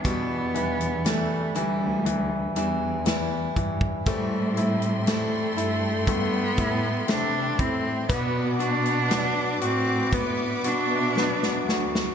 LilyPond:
<<
  \new Staff \with { instrumentName = "String section" } { \time 4/4 \key e \minor \tempo 4 = 60 << { r1 | <a' c'''>1 | <b' d'''>1 | } \\ { r1 | g''1 | fis''2 e''2 | } >> }
  \new Staff \with { instrumentName = "Steel-string acoustic guitar" } { \time 4/4 \key e \minor <e, b, e g d' e'>8 <e g d' e'>8 <e g d' e'>8 <e g d' e'>4 <e g d' e'>8 <e g d' e'>4 | <a, e g c' e'>8 <g c' e'>8 <e g c' e'>8 <g e'>4 <g e'>8 <e g c' e'>4 | <b, fis b d' fis'>8 <b d' fis'>8 <fis b d' fis'>8 <d' fis'>4 <b d' fis'>8 <fis b d' fis'>4 | }
  \new Staff \with { instrumentName = "Cello" } { \time 4/4 \key e \minor b4 a8 g4 r4. | g4 a4 b4 d'8 c'8 | b8 d'4 c'8 b8 d'4 r8 | }
  \new Staff \with { instrumentName = "Grand piano" } { \time 4/4 \key e \minor <b, e>8 e8 e8 e8 e8 e8 e8 e8 | a8 e'8 a8 e'8 a8 e'8 a8 e'8 | b'8 fis'8 d'8 fis'8 b8 fis'8 b8 fis'8 | }
  \new Staff \with { instrumentName = "Cello section" } { \clef bass \time 4/4 \key e \minor e,4. d,4 e,4 g,8 | a,4. g,4 a,8 c8 a,8 | b,4. a,4 b,4 d,8 | }
  \new DrumStaff \with { instrumentName = "Drums" } \drummode { \time 4/4 <hh bd>8 hh16 hh16 <hh sn>8 hh8 hh8 hh8 <hh sn>8 <hh bd>16 bd16 | <hh bd>8 hh16 hh16 <hh sn>8 hh8 <hh bd>8 <hh bd>8 <hh sn>8 <hh bd>8 | <hh bd>8 hh16 hh16 <hh sn>8 hh8 <hh bd>8 hh8 sn16 sn16 sn16 sn16 | }
>>